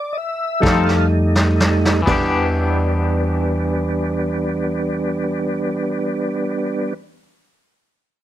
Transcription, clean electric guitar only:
0.62 F3 C4 D#4 A4
2.02 E3 B3
2.09 D4 G4

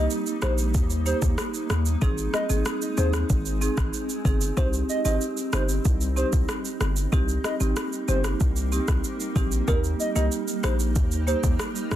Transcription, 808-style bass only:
0.42 A#1
0.75 D#2
1.22 D#2
1.70 D#2
2.02 G#1
2.50 G#1
2.98 D#2
3.30 G#1
3.78 G#1
4.25 G1
4.57 C2
5.05 G#1
5.53 G1
5.85 C2
6.33 C2
6.81 G1
7.13 C2
7.61 G#1
8.08 G1
8.41 C2
8.88 C2
9.36 A#1
9.68 D#2
10.16 C2
10.64 A#1
10.96 D#2
11.44 D#2
11.91 D#2

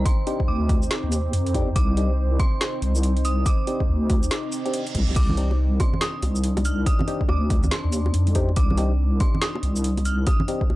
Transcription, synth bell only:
0.06 C6
0.48 D6
1.76 D6
2.40 C6
3.25 D#6
3.46 D6
5.16 D6
5.80 C6
6.02 D#6
6.65 F6
6.86 D#6
7.29 D6
7.72 C6
8.57 D6
9.20 C6
9.42 D#6
10.06 F6
10.27 D#6

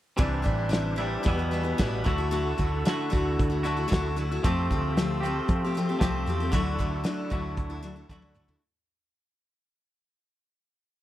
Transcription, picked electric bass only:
0.19 C2
0.46 A1
1.27 E2
1.80 A1
2.06 D2
2.59 D2
3.13 D2
3.39 D2
3.92 D2
4.45 F2
4.71 D2
5.49 F3
6.02 C2
6.27 E2
6.53 D2
6.79 D2
7.32 D2
7.58 D2
8.10 D2

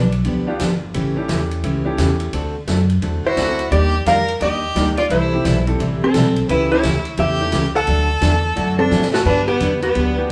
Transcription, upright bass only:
Already playing: B1
0.25 D2
0.60 G1
0.95 A1
1.29 E2
1.64 C#2
1.98 E2
2.33 D2
2.67 F#2
3.02 E2
3.24 muted upright bass stroke
3.37 D2
3.71 D#2
4.05 F2
4.41 D#2
4.75 D2
5.10 C2
5.44 B1
5.80 A1
6.01 muted upright bass stroke
6.14 B1
6.49 C#2
6.84 D2
7.18 E2
7.53 C#2
7.87 D2
8.21 E2
8.56 F#2
8.91 A2
9.25 G2
9.60 E2
9.96 D2

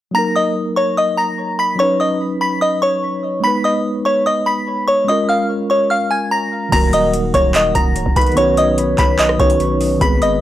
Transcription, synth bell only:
0.15 A#5 A#6
0.36 D#5 D#6
0.76 C#5 C#6
0.97 D#5 D#6
1.17 A#5 A#6
1.59 B5 B6
1.79 C#5 C#6
2.00 D#5 D#6
2.41 B5 B6
2.61 D#5 D#6
2.82 C#5 C#6
3.44 B5 B6
3.64 D#5 D#6
4.05 C#5 C#6
4.26 D#5 D#6
4.46 B5 B6
4.88 C#5 C#6
5.08 D#5 D#6
5.29 F5 F6
5.70 C#5 C#6
5.90 F5 F6
6.11 G#5 G#6
6.31 A#5 A#6
6.72 A#5 A#6
6.93 D#5 D#6
7.34 C#5 C#6
7.55 D#5 D#6
7.75 A#5 A#6
8.17 B5 B6
8.37 C#5 C#6
8.58 D#5 D#6
8.99 B5 B6
9.19 D#5 D#6
9.40 C#5 C#6
10.01 B5 B6
10.22 D#5 D#6

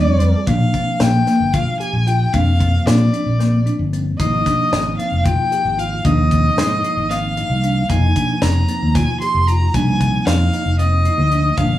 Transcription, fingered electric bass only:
0.08 F2
0.21 F2
0.47 A#1
1.00 A#1
1.40 G1
1.93 A#1
2.34 F2
2.86 A#2
3.26 A#1
3.79 G1
4.20 G#1
4.72 G#1
5.12 F1
5.65 G#1
6.05 D#2
6.57 G#2
6.97 G#1
7.50 C2
7.90 F1
8.42 F1
8.82 D#2
9.34 F1
9.74 C2
10.26 F2
10.65 F1
11.18 D2
11.58 G1

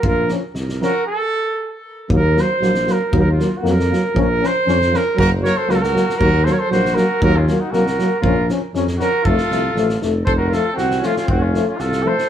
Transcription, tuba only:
0.04 A#1
0.55 C2
2.09 D#2
2.61 A#1
3.12 D#2
3.63 F2
4.15 A#1
4.67 F2
5.18 F#1
5.68 C#2
6.20 D#2
6.71 A#1
7.22 D#2
7.72 C2
8.23 A#1
8.74 F2
9.24 F1
9.49 C2
9.74 A1
10.01 F1
10.27 F1
10.77 C2
11.29 F1
11.80 C2

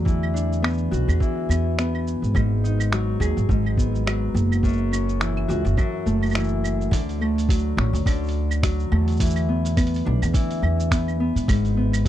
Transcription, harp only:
Already playing: D3 F#3 A3 C#4 F#4
0.05 E3
0.34 D4
0.62 B3
0.91 F#4
1.08 G#4
1.20 E3
1.49 B3
1.78 B3
2.35 G#2
2.64 D#4
2.93 F#3
3.21 G#4
3.49 G#2
3.77 B3
4.06 F#3
4.64 F#2
4.92 C#4
5.20 E3
5.48 F#4
5.77 F#2
6.06 A3
6.35 E3
6.92 D3
7.21 A3
7.49 F#3
7.78 C#4
8.06 D3
8.63 F#3
8.92 A3
9.20 E3
9.49 B3
9.77 B3
10.05 D4
10.33 E3
10.91 B3
11.20 B3
11.48 G#2
11.77 B3

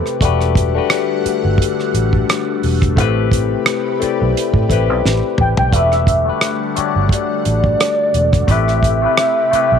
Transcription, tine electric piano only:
Already playing: A3 C4 E4 G4 B4
0.21 A3 D4 F#4 G4 B4
0.74 A3 D4 F#4 G4 B4
2.96 A3 C4 E4 G4
3.00 B4
3.99 A3 C4 E4 G4
4.04 D5
4.69 A3 C4 E4 G4
4.73 B4
5.72 A3 D4 F#4 G4
5.76 B4
6.25 A3 D4 F#4 G4
6.29 B4
6.76 A3 D4 F#4 G4 C#5
6.86 D5
8.47 A3 C4 E4 G4
8.52 B4
9.02 A3 C4 E4 G4
9.06 B4
9.51 A3 C4 E4 G4
9.55 B4

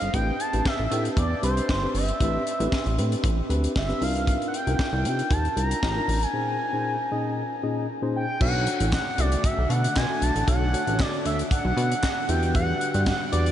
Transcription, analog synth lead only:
Already playing: F5
0.13 G5
0.40 A5
0.66 E5
0.92 E5
1.18 D5
1.44 C5
1.96 E5
3.78 E5
4.03 F5
4.48 F#5
4.55 G5
5.33 A5
5.58 A#5
6.22 G#5
8.16 G5
8.42 F#5
8.94 F#5
9.20 D5
9.45 E5
9.70 F#5
9.97 G#5
10.23 A5
10.48 F#5
11.00 D5
11.26 E5
11.52 F#5
12.29 G5
12.55 F#5
13.07 F#5
13.32 D5

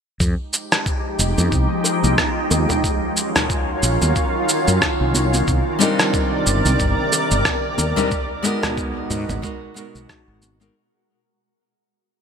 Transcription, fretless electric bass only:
0.20 F2
1.19 F1
1.38 F2
1.52 C2
2.04 C2
2.51 D#2
3.83 A#1
4.02 D#2
4.68 F#2
5.01 C2
5.48 C2
6.47 G1
6.65 C2
6.80 G1
7.31 G1
7.78 D#2
9.10 G#2
9.29 G#1
9.95 B1
10.28 G#1

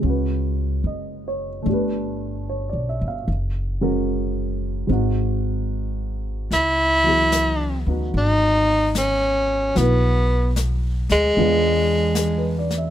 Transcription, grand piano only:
0.00 G#3 C#4
0.06 F#4 B4
0.87 D#5
1.28 C#5
1.62 A3 D4
1.69 G4
1.73 B4
2.49 C#5
2.69 D5
2.89 E5
3.08 F5
3.81 G#3 C#4 F#4 A#4
4.87 G#3 C4 D#4
4.92 F#4
7.03 E3 F#3 B3
7.08 G#4
7.87 B3 D#4 F#4
9.75 F#3 B3 E4
9.80 B4
11.38 G#3 B3 D4 F4
12.18 G#4
12.38 B4
12.58 D5
12.78 E5

